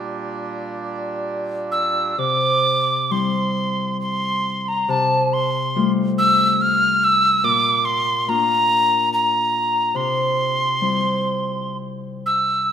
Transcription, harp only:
0, 0, Header, 1, 2, 480
1, 0, Start_track
1, 0, Tempo, 944882
1, 1109, Time_signature, 3, 2, 24, 8
1, 1110, Tempo, 910470
1, 2070, Tempo, 872093
1, 3030, Tempo, 840336
1, 5430, Tempo, 878477
1, 5910, Tempo, 950872
1, 6866, End_track
2, 0, Start_track
2, 0, Title_t, "Harp"
2, 0, Program_c, 0, 46
2, 1108, Note_on_c, 0, 48, 52
2, 1596, Note_on_c, 0, 55, 39
2, 1599, Note_on_c, 0, 60, 35
2, 1603, Note_on_c, 0, 64, 40
2, 2546, Note_off_c, 0, 48, 0
2, 2553, Note_on_c, 0, 48, 57
2, 2583, Note_off_c, 0, 55, 0
2, 3020, Note_off_c, 0, 64, 0
2, 3033, Note_on_c, 0, 55, 42
2, 3037, Note_on_c, 0, 65, 47
2, 3038, Note_on_c, 0, 57, 39
2, 3237, Note_off_c, 0, 60, 0
2, 3993, Note_on_c, 0, 46, 69
2, 4019, Note_off_c, 0, 48, 0
2, 4019, Note_off_c, 0, 55, 0
2, 4027, Note_off_c, 0, 57, 0
2, 4474, Note_on_c, 0, 58, 47
2, 4476, Note_on_c, 0, 62, 41
2, 4478, Note_off_c, 0, 65, 0
2, 4482, Note_on_c, 0, 65, 50
2, 5426, Note_on_c, 0, 48, 57
2, 5455, Note_off_c, 0, 46, 0
2, 5899, Note_on_c, 0, 55, 37
2, 5901, Note_off_c, 0, 65, 0
2, 5903, Note_on_c, 0, 60, 37
2, 5906, Note_on_c, 0, 64, 41
2, 6037, Note_off_c, 0, 62, 0
2, 6245, Note_off_c, 0, 58, 0
2, 6860, Note_off_c, 0, 48, 0
2, 6866, Note_off_c, 0, 55, 0
2, 6866, Note_off_c, 0, 60, 0
2, 6866, Note_off_c, 0, 64, 0
2, 6866, End_track
0, 0, End_of_file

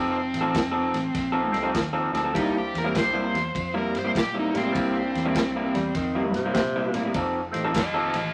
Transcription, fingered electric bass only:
0, 0, Header, 1, 2, 480
1, 0, Start_track
1, 0, Tempo, 598205
1, 1886, Time_signature, 4, 2, 24, 8
1, 6689, End_track
2, 0, Start_track
2, 0, Title_t, "Fingered electric bass"
2, 0, Program_c, 0, 33
2, 0, Note_on_c, 0, 29, 83
2, 266, Note_off_c, 0, 29, 0
2, 269, Note_on_c, 0, 33, 90
2, 435, Note_off_c, 0, 33, 0
2, 444, Note_on_c, 0, 29, 86
2, 747, Note_off_c, 0, 29, 0
2, 753, Note_on_c, 0, 33, 82
2, 917, Note_off_c, 0, 33, 0
2, 924, Note_on_c, 0, 34, 91
2, 1227, Note_off_c, 0, 34, 0
2, 1236, Note_on_c, 0, 36, 83
2, 1398, Note_off_c, 0, 36, 0
2, 1406, Note_on_c, 0, 39, 94
2, 1705, Note_off_c, 0, 39, 0
2, 1710, Note_on_c, 0, 38, 80
2, 1875, Note_off_c, 0, 38, 0
2, 1888, Note_on_c, 0, 36, 73
2, 2189, Note_off_c, 0, 36, 0
2, 2200, Note_on_c, 0, 40, 86
2, 2361, Note_off_c, 0, 40, 0
2, 2368, Note_on_c, 0, 36, 96
2, 2669, Note_off_c, 0, 36, 0
2, 2676, Note_on_c, 0, 40, 77
2, 2839, Note_off_c, 0, 40, 0
2, 2849, Note_on_c, 0, 41, 90
2, 3150, Note_off_c, 0, 41, 0
2, 3166, Note_on_c, 0, 43, 83
2, 3324, Note_off_c, 0, 43, 0
2, 3333, Note_on_c, 0, 46, 80
2, 3632, Note_off_c, 0, 46, 0
2, 3648, Note_on_c, 0, 45, 94
2, 3805, Note_off_c, 0, 45, 0
2, 3813, Note_on_c, 0, 36, 73
2, 4112, Note_off_c, 0, 36, 0
2, 4132, Note_on_c, 0, 40, 87
2, 4287, Note_off_c, 0, 40, 0
2, 4295, Note_on_c, 0, 36, 88
2, 4594, Note_off_c, 0, 36, 0
2, 4610, Note_on_c, 0, 40, 84
2, 4767, Note_off_c, 0, 40, 0
2, 4776, Note_on_c, 0, 41, 85
2, 5075, Note_off_c, 0, 41, 0
2, 5083, Note_on_c, 0, 43, 84
2, 5243, Note_off_c, 0, 43, 0
2, 5255, Note_on_c, 0, 46, 90
2, 5554, Note_off_c, 0, 46, 0
2, 5570, Note_on_c, 0, 45, 79
2, 5727, Note_off_c, 0, 45, 0
2, 5735, Note_on_c, 0, 29, 81
2, 6034, Note_off_c, 0, 29, 0
2, 6053, Note_on_c, 0, 33, 80
2, 6208, Note_off_c, 0, 33, 0
2, 6215, Note_on_c, 0, 29, 82
2, 6514, Note_off_c, 0, 29, 0
2, 6531, Note_on_c, 0, 33, 78
2, 6688, Note_off_c, 0, 33, 0
2, 6689, End_track
0, 0, End_of_file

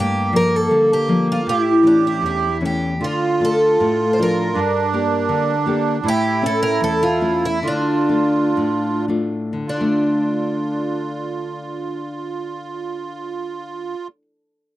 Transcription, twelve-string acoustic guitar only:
0, 0, Header, 1, 2, 480
1, 0, Start_track
1, 0, Key_signature, -1, "minor"
1, 0, Tempo, 761421
1, 922, Time_signature, 2, 2, 24, 8
1, 4296, Tempo, 825309
1, 4776, Tempo, 934579
1, 5256, Tempo, 1094891
1, 5736, Tempo, 1171875
1, 7824, End_track
2, 0, Start_track
2, 0, Title_t, "Twelve-string acoustic guitar"
2, 0, Program_c, 0, 25
2, 0, Note_on_c, 0, 67, 101
2, 209, Note_off_c, 0, 67, 0
2, 229, Note_on_c, 0, 70, 102
2, 353, Note_off_c, 0, 70, 0
2, 353, Note_on_c, 0, 69, 96
2, 585, Note_off_c, 0, 69, 0
2, 588, Note_on_c, 0, 67, 88
2, 798, Note_off_c, 0, 67, 0
2, 831, Note_on_c, 0, 65, 88
2, 938, Note_off_c, 0, 65, 0
2, 941, Note_on_c, 0, 64, 94
2, 1154, Note_off_c, 0, 64, 0
2, 1179, Note_on_c, 0, 62, 84
2, 1294, Note_off_c, 0, 62, 0
2, 1305, Note_on_c, 0, 64, 81
2, 1407, Note_off_c, 0, 64, 0
2, 1424, Note_on_c, 0, 64, 71
2, 1666, Note_off_c, 0, 64, 0
2, 1673, Note_on_c, 0, 67, 74
2, 1915, Note_off_c, 0, 67, 0
2, 1918, Note_on_c, 0, 65, 82
2, 2161, Note_off_c, 0, 65, 0
2, 2173, Note_on_c, 0, 69, 91
2, 2602, Note_off_c, 0, 69, 0
2, 2604, Note_on_c, 0, 72, 58
2, 2639, Note_off_c, 0, 72, 0
2, 2664, Note_on_c, 0, 70, 78
2, 3567, Note_off_c, 0, 70, 0
2, 3835, Note_on_c, 0, 67, 109
2, 4069, Note_off_c, 0, 67, 0
2, 4073, Note_on_c, 0, 69, 103
2, 4175, Note_off_c, 0, 69, 0
2, 4177, Note_on_c, 0, 70, 106
2, 4301, Note_off_c, 0, 70, 0
2, 4309, Note_on_c, 0, 69, 98
2, 4419, Note_on_c, 0, 65, 79
2, 4421, Note_off_c, 0, 69, 0
2, 4662, Note_off_c, 0, 65, 0
2, 4668, Note_on_c, 0, 64, 85
2, 4786, Note_off_c, 0, 64, 0
2, 4794, Note_on_c, 0, 62, 83
2, 5475, Note_off_c, 0, 62, 0
2, 5746, Note_on_c, 0, 62, 78
2, 7552, Note_off_c, 0, 62, 0
2, 7824, End_track
0, 0, End_of_file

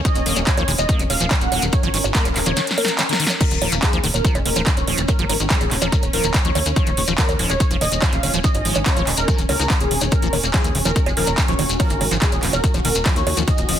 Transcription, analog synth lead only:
0, 0, Header, 1, 2, 480
1, 0, Start_track
1, 0, Key_signature, -6, "minor"
1, 0, Tempo, 419580
1, 57, Time_signature, 4, 2, 24, 8
1, 15781, End_track
2, 0, Start_track
2, 0, Title_t, "Analog synth lead"
2, 0, Program_c, 0, 81
2, 57, Note_on_c, 0, 75, 108
2, 355, Note_off_c, 0, 75, 0
2, 537, Note_on_c, 0, 73, 99
2, 760, Note_off_c, 0, 73, 0
2, 897, Note_on_c, 0, 75, 102
2, 1120, Note_off_c, 0, 75, 0
2, 1257, Note_on_c, 0, 77, 98
2, 1481, Note_off_c, 0, 77, 0
2, 1617, Note_on_c, 0, 78, 98
2, 1840, Note_off_c, 0, 78, 0
2, 1976, Note_on_c, 0, 73, 101
2, 2275, Note_off_c, 0, 73, 0
2, 2457, Note_on_c, 0, 70, 95
2, 2681, Note_off_c, 0, 70, 0
2, 2817, Note_on_c, 0, 73, 97
2, 3041, Note_off_c, 0, 73, 0
2, 3177, Note_on_c, 0, 70, 98
2, 3401, Note_off_c, 0, 70, 0
2, 3538, Note_on_c, 0, 70, 99
2, 3761, Note_off_c, 0, 70, 0
2, 3897, Note_on_c, 0, 70, 105
2, 4195, Note_off_c, 0, 70, 0
2, 4377, Note_on_c, 0, 68, 98
2, 4600, Note_off_c, 0, 68, 0
2, 4737, Note_on_c, 0, 70, 100
2, 4960, Note_off_c, 0, 70, 0
2, 5097, Note_on_c, 0, 70, 98
2, 5320, Note_off_c, 0, 70, 0
2, 5456, Note_on_c, 0, 73, 101
2, 5680, Note_off_c, 0, 73, 0
2, 5816, Note_on_c, 0, 70, 103
2, 6114, Note_off_c, 0, 70, 0
2, 6297, Note_on_c, 0, 68, 98
2, 6520, Note_off_c, 0, 68, 0
2, 6656, Note_on_c, 0, 70, 99
2, 6880, Note_off_c, 0, 70, 0
2, 7016, Note_on_c, 0, 70, 96
2, 7240, Note_off_c, 0, 70, 0
2, 7376, Note_on_c, 0, 73, 98
2, 7600, Note_off_c, 0, 73, 0
2, 7736, Note_on_c, 0, 73, 102
2, 8035, Note_off_c, 0, 73, 0
2, 8217, Note_on_c, 0, 70, 98
2, 8440, Note_off_c, 0, 70, 0
2, 8576, Note_on_c, 0, 73, 99
2, 8800, Note_off_c, 0, 73, 0
2, 8937, Note_on_c, 0, 75, 101
2, 9160, Note_off_c, 0, 75, 0
2, 9297, Note_on_c, 0, 77, 99
2, 9520, Note_off_c, 0, 77, 0
2, 9657, Note_on_c, 0, 75, 104
2, 9955, Note_off_c, 0, 75, 0
2, 10137, Note_on_c, 0, 73, 97
2, 10360, Note_off_c, 0, 73, 0
2, 10497, Note_on_c, 0, 70, 100
2, 10720, Note_off_c, 0, 70, 0
2, 10857, Note_on_c, 0, 70, 98
2, 11080, Note_off_c, 0, 70, 0
2, 11217, Note_on_c, 0, 68, 99
2, 11440, Note_off_c, 0, 68, 0
2, 11577, Note_on_c, 0, 70, 99
2, 11875, Note_off_c, 0, 70, 0
2, 12057, Note_on_c, 0, 68, 95
2, 12281, Note_off_c, 0, 68, 0
2, 12417, Note_on_c, 0, 70, 100
2, 12641, Note_off_c, 0, 70, 0
2, 12777, Note_on_c, 0, 70, 97
2, 13001, Note_off_c, 0, 70, 0
2, 13137, Note_on_c, 0, 73, 100
2, 13360, Note_off_c, 0, 73, 0
2, 13497, Note_on_c, 0, 70, 105
2, 13795, Note_off_c, 0, 70, 0
2, 13977, Note_on_c, 0, 68, 100
2, 14200, Note_off_c, 0, 68, 0
2, 14337, Note_on_c, 0, 70, 99
2, 14560, Note_off_c, 0, 70, 0
2, 14698, Note_on_c, 0, 70, 99
2, 14921, Note_off_c, 0, 70, 0
2, 15057, Note_on_c, 0, 73, 98
2, 15280, Note_off_c, 0, 73, 0
2, 15417, Note_on_c, 0, 75, 104
2, 15715, Note_off_c, 0, 75, 0
2, 15781, End_track
0, 0, End_of_file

